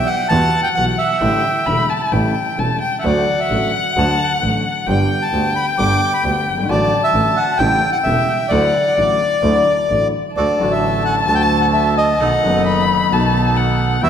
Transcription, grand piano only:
0.30 E2 E3 G3 B3 F#4
0.77 B1 B2 E3 G3 B3 F#4
1.21 A1 A2 D3 G3 A3 E4
1.67 E1 E2 D3 G3 A3 E4
2.12 A1 A2 C#3 G3 A3 E4
2.58 E1 E2 C#3 G3 A3 E4
3.04 D2 D3 F#3 A3 F#4
3.51 A1 A2 D3 F#3 A3 F#4
3.96 D2 D3 F#3 A3 F#4
4.42 A1 A2 D3 F#3 A3 F#4
4.88 G1 G2 D3 G3 B3 G4
5.32 D2 D3 G3 B3 G4
5.79 G1 G2 D3 G3 B3 G4
6.24 D2 D3 G3 B3 G4
6.52 F#1
6.57 G1
6.63 G#1
6.69 A1 A2 D3 F#3 A3 F#4
7.14 A1 A2 D3 F#3 A3 F#4
7.60 A1 A2 C#3 G3 A3 E4
8.06 E1 E2 C#3 G3 A3 E4
8.51 D2 D3 F#3 A3 E4
8.97 A1 A2 D3 F#3 A3 E4
9.43 D2 D3 F#3 A3 E4
9.90 A1 A2 D3 F#3 A3 E4
10.37 D2 D3 F#3 A3 F#4
10.59 A1 A2 D3 F#3 A3 F#4
11.27 D2 D3 F#3 A3
11.31 F#4
12.21 B1 B2 D#3 A3 B3 F#4
12.43 F#1 F#2 D#3 A3 B3 F#4
13.10 B1 B2 D#3 A3 B3 F#4
14.02 E2 E3 G3 B3 F#4

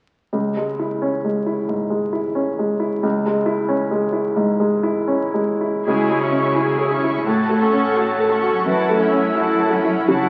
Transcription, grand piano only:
0.33 C#2
0.57 G#3
0.79 E4
1.02 C#4
1.24 G#3
1.46 E4
1.69 G#2
1.90 G#3
2.13 E4
2.35 C#4
2.59 G#3
2.80 E4
3.03 C#2
3.26 G#3
3.46 E4
3.69 C#4
3.91 G#3
4.13 E4
4.36 G#2
4.60 G#3
4.83 E4
5.08 C#4
5.34 G#3
5.61 E4
5.88 C#2
6.10 G#3
6.31 C#4
6.56 E4
6.79 G#4
7.04 E4
7.27 A2
7.49 A3
7.73 C#4
7.96 F#4
8.20 A4
8.42 F#4
8.66 F#2
8.89 A3
9.12 C#4
9.35 E4
9.60 A4
9.84 E4
10.08 C#3

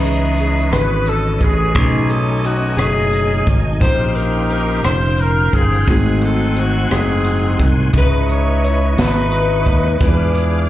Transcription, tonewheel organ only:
Already playing: B4 C#5 D#5
1.75 A3 G#5
3.82 C5 F5 G5
5.86 F#4 F#5 G#5 C6
7.93 B4 D#5 C#6
10.02 G#4 F5 D6

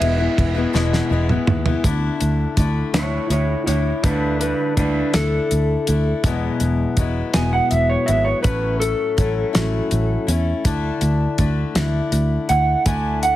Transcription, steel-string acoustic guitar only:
0.00 E3 G#3 B3 E4
0.17 E3 G#3 B3 E4
0.55 E3 G#3 B3 E4
0.73 E2 B2 E3 G#3 B3 E4
1.10 E3 G#3 B3 E4
1.29 E3 G#3 B3 E4
1.65 E3 G#3 B3 E4
1.84 D3 A3 D4 E4
2.56 D3 A3 D4 E4
2.93 D3 A3 D4 E4
3.67 A3 D4 E4
4.04 D3 A3 D4 E4
4.77 D3 A3 D4 E4
5.14 D3 A3 D4 E4
5.87 A3 D4 E4
6.25 E2 B2 F#3 G#3 B3 E4
6.97 F#3 G#3 B3 E4
7.35 E2 B2 F#3 G#3 B3 E4
8.07 F#3 G#3 B3 E4
8.43 A2 F#3 A3 C#4 E4
9.17 F#3 A3 C#4 E4
9.53 A2 F#3 A3 C#4 E4
10.27 A3 C#4 E4
10.64 D3 A3 D4 E4
11.38 D3 A3 D4 E4
11.76 D3 A3 D4 E4
12.49 A3 D4 E4
12.86 D3 A3 D4 E4

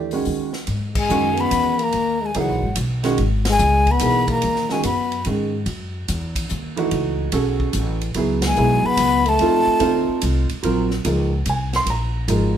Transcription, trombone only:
0.95 G#3
1.37 B3
1.80 A#3
2.22 G#3
2.34 F#3
3.49 G#3
3.91 B3
4.29 A#3
4.69 G#3
4.82 B3
8.46 G#3
8.87 B3
9.26 A3

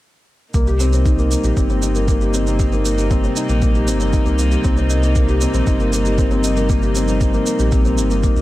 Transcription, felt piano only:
0.54 A#3
0.67 G4
0.80 C4
0.93 C4
1.05 D#4
1.18 A#3
1.31 A#3
1.44 G4
1.57 C4
1.70 C4
1.82 D#4
1.95 A#3
2.08 A#3
2.21 G4
2.34 C4
2.47 C4
2.59 D#4
2.72 A#3
2.85 A#3
2.98 G4
3.11 C4
3.24 C4
3.37 D#4
3.49 A#3
3.62 A#3
3.75 G4
3.87 C4
4.00 C4
4.13 D#4
4.26 A#3
4.38 A#3
4.51 G4
4.64 C4
4.77 C4
4.90 D#4
5.03 A#3
5.16 A#3
5.28 G4
5.41 C4
5.54 C4
5.67 D#4
5.80 A#3
5.93 A#3
6.05 G4
6.18 C4
6.31 C4
6.44 D#4
6.57 A#3
6.70 A#3
6.83 G4
6.96 C4
7.08 C4
7.21 D#4
7.34 A#3
7.46 A#3
7.59 G4
7.72 C4
7.85 C4
7.98 D#4
8.10 A#3
8.23 A#3
8.36 G4

